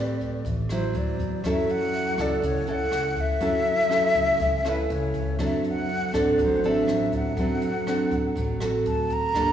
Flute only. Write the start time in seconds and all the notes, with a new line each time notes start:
Already playing: D5
0.71 C5
0.97 D5
1.47 E5
1.71 F#5
2.21 D5
2.44 C#5
2.71 F#5
3.20 E5
4.69 B4
4.92 C#5
5.44 E5
5.69 F#5
6.18 D5
6.43 C5
6.68 E5
7.17 F#5
8.87 A5
9.13 A#5